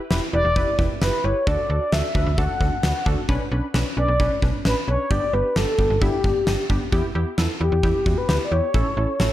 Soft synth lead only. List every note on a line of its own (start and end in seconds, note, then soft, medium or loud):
0.33 0.76 D5 loud
1.02 1.26 B4 medium
1.24 1.47 C#5 medium
1.47 1.68 D5 medium
1.70 1.94 D5 medium
1.93 2.40 E5 loud
2.38 3.06 F#5 loud
3.97 4.39 D5 loud
4.65 4.75 B4 loud
4.88 5.12 C#5 loud
5.11 5.35 D5 loud
5.33 5.58 B4 loud
5.56 6.01 A4 medium
6.02 6.66 G4 medium
7.61 8.19 G4 medium
8.18 8.28 B4 medium
8.29 8.36 B4 loud
8.44 8.53 D5 medium
8.52 9.33 C#5 loud